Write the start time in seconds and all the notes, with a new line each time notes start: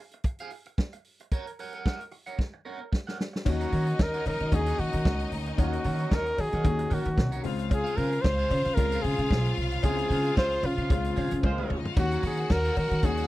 0.11 muted clean electric guitar stroke, closed hi-hat
0.24 muted clean electric guitar stroke, kick, closed hi-hat
0.39 G#4 C5 F5, closed hi-hat
0.50 muted clean electric guitar stroke, open hi-hat
0.66 muted clean electric guitar stroke, closed hi-hat
0.78 muted clean electric guitar stroke, kick, snare
0.93 muted clean electric guitar stroke, closed hi-hat
1.05 open hi-hat
1.20 muted clean electric guitar stroke, closed hi-hat
1.31 A#4 C#5 F#5, kick, closed hi-hat
1.47 muted clean electric guitar stroke, closed hi-hat
1.59 A#4 C#5 F#5, open hi-hat
1.73 A#4 C#5 F#5, closed hi-hat
1.86 A#4 C#5 F#5, kick, snare
2.00 muted clean electric guitar stroke, closed hi-hat
2.11 muted clean electric guitar stroke, open hi-hat
2.26 A#4 C#5 F#5, closed hi-hat
2.39 kick, snare
2.54 muted clean electric guitar stroke
2.65 A#4 C#5 F#5
2.80 muted clean electric guitar stroke
2.92 muted clean electric guitar stroke, kick, snare
3.07 A#4 C#5 F#5, snare
3.19 muted clean electric guitar stroke, snare
3.33 muted clean electric guitar stroke, snare
3.45 D#2 D#3 A#3 C#4 D#4 F#4 D#5, muted clean electric guitar stroke, kick, crash, cowbell
3.61 A#4 C#5 F#5, closed hi-hat
3.72 D#3 A#4 C#5 F#5, open hi-hat
3.87 muted clean electric guitar stroke, closed hi-hat
3.98 D#2 A#4, muted clean electric guitar stroke, kick, snare, cowbell
4.13 A#4 C#5 F#5, closed hi-hat
4.25 D#3 A#4, muted clean electric guitar stroke, open hi-hat, cowbell
4.40 D#3, muted clean electric guitar stroke, closed hi-hat
4.51 D#2 D#3 A#3 C#4 F#4 G#4, muted clean electric guitar stroke, kick, closed hi-hat, cowbell
4.66 A#4 C#5 F#5, closed hi-hat
4.78 D#3 F#4, muted clean electric guitar stroke, open hi-hat
4.93 D#3, muted clean electric guitar stroke, closed hi-hat
5.05 C#2, muted clean electric guitar stroke, kick, snare, cowbell
5.20 muted clean electric guitar stroke, closed hi-hat
5.32 D2, open hi-hat
5.46 muted clean electric guitar stroke, closed hi-hat
5.57 D#2 D#3 A#3 C#4 F#4 A#4 C#5 F#5, kick, closed hi-hat, cowbell
5.73 muted clean electric guitar stroke, closed hi-hat
5.84 D#3 A#4 C#5 F#5, open hi-hat
5.99 A#4 C#5 F#5, closed hi-hat
6.11 D#2 A#4 C#5 F#5, kick, snare, cowbell
6.26 muted clean electric guitar stroke, closed hi-hat
6.38 D#3 G#4, muted clean electric guitar stroke, open hi-hat, cowbell
6.53 D#3 A#4 C#5 F#5, closed hi-hat
6.64 D#2 D#3 A#3 C#4 F#4, kick, closed hi-hat, cowbell
6.79 muted clean electric guitar stroke, closed hi-hat
6.90 D#3 F#4 A#4 C#5 F#5, open hi-hat
7.05 D#3, muted clean electric guitar stroke, closed hi-hat
7.16 C2, muted clean electric guitar stroke, kick, snare, cowbell
7.32 A#4 C#5 F#5, closed hi-hat
7.43 C#2 C#3 G#3 C4 F4 F5, muted clean electric guitar stroke, open hi-hat
7.58 muted clean electric guitar stroke, closed hi-hat
7.70 G#4, muted clean electric guitar stroke, kick, closed hi-hat, cowbell
7.84 G#4 C5 F5, closed hi-hat
7.97 C#3 G#4 A#4 C5 F5, open hi-hat
8.12 muted clean electric guitar stroke, closed hi-hat
8.21 C#2 C5, muted clean electric guitar stroke, kick, snare, cowbell
8.38 G#4 C5 F5, closed hi-hat
8.50 C#3, muted clean electric guitar stroke, open hi-hat, cowbell
8.65 C#3, muted clean electric guitar stroke, closed hi-hat
8.75 C#2 C#3 G#3 C4 F4 A#4, muted clean electric guitar stroke, kick, closed hi-hat, cowbell
8.92 G#4 C5 F5, closed hi-hat
9.02 C#3 G#4, muted clean electric guitar stroke, open hi-hat
9.18 C#3, muted clean electric guitar stroke, closed hi-hat
9.30 B1, muted clean electric guitar stroke, kick, snare, cowbell
9.46 muted clean electric guitar stroke, closed hi-hat
9.57 C2, open hi-hat
9.72 muted clean electric guitar stroke, closed hi-hat
9.83 C#2 C#3 G#3 C4 E4 G#4 C5 F5, kick, closed hi-hat, cowbell
9.91 F4
9.98 muted clean electric guitar stroke, closed hi-hat
10.10 C#3 G#4 C5 F5, open hi-hat
10.24 G#4 C5 F5, closed hi-hat
10.35 C#2 G#3 F4 G#4 C5 F5, kick, snare, cowbell
10.52 muted clean electric guitar stroke, closed hi-hat
10.63 C#3 F4, muted clean electric guitar stroke, open hi-hat, cowbell
10.78 C#3 G#4 C5 F5, closed hi-hat
10.90 C#2 C#3 G#3 C4 F4, kick, closed hi-hat, cowbell
11.04 muted clean electric guitar stroke, closed hi-hat
11.16 C#3 G#4 C5 F5, open hi-hat, cowbell
11.31 C#3, muted clean electric guitar stroke, closed hi-hat
11.43 C#2 G#3 F4 G#4 C5, muted clean electric guitar stroke, kick, high tom, cowbell
11.51 A#3 A#4
11.58 C4 G#4 C5 F5, mid tom
11.70 D2 C#4 C#5, mid tom
11.78 D#4 D#5
11.85 F4 F5, muted clean electric guitar stroke, floor tom
11.95 D#2 D#3 A#3 C#4 F#4 F#5, muted clean electric guitar stroke, kick, crash, cowbell
11.99 F#4
12.11 A#4 C#5 F#5, closed hi-hat
12.23 D#3 G#4 A#4 C#5 F#5, open hi-hat
12.37 muted clean electric guitar stroke, closed hi-hat
12.50 D#2 A#4, muted clean electric guitar stroke, kick, snare, cowbell
12.64 A#4 C#5 F#5, closed hi-hat
12.76 D#3 A#4, muted clean electric guitar stroke, open hi-hat, cowbell
12.91 D#3, muted clean electric guitar stroke, closed hi-hat
13.02 D#2 D#3 A#3 C#4 F#4 G#4, muted clean electric guitar stroke, kick, closed hi-hat, cowbell
13.17 A#4 C#5 F#5, closed hi-hat